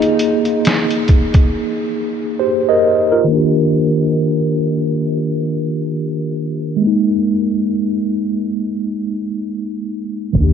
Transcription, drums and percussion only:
0.02 closed hi-hat
0.19 closed hi-hat
0.45 closed hi-hat
0.65 snare, closed hi-hat
0.91 closed hi-hat
1.08 kick, closed hi-hat
1.34 kick, closed hi-hat
10.34 kick, closed hi-hat

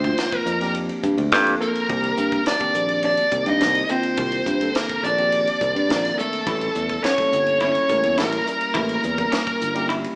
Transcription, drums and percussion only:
0.04 kick, ride
0.18 snare, ride
0.32 kick, ride
0.46 hi-hat pedal
0.61 snare, ride
0.74 ride
0.89 ride
1.03 kick, hi-hat pedal
1.18 ride
1.32 snare, ride
1.47 ride
1.61 hi-hat pedal
1.75 ride
1.90 kick, ride
2.04 ride
2.17 hi-hat pedal
2.32 kick, ride
2.46 snare, ride
2.60 kick, ride
2.74 hi-hat pedal
2.89 ride
3.03 ride
3.17 ride
3.31 kick, hi-hat pedal
3.46 ride
3.61 snare, ride
3.75 ride
3.89 hi-hat pedal
4.03 ride
4.17 kick, ride
4.32 ride
4.46 kick, hi-hat pedal
4.61 ride
4.75 snare, ride
4.89 kick, ride
5.04 hi-hat pedal
5.18 ride
5.32 ride
5.47 ride
5.61 kick, hi-hat pedal
5.76 ride
5.90 snare, ride
6.05 snare, ride
6.19 hi-hat pedal
6.33 ride
6.47 kick, ride
6.61 ride
6.75 hi-hat pedal
6.89 kick, ride
7.04 snare, ride
7.18 kick, snare, ride
7.32 hi-hat pedal
7.46 ride
7.60 ride
7.75 ride
7.89 kick, snare, hi-hat pedal
8.03 ride
8.18 snare, ride
8.32 ride
8.47 hi-hat pedal
8.61 ride
8.74 kick, ride
8.89 ride
9.03 hi-hat pedal
9.18 kick, ride
9.32 snare, ride
9.47 kick, ride
9.61 hi-hat pedal
9.75 ride
9.90 ride
10.04 ride

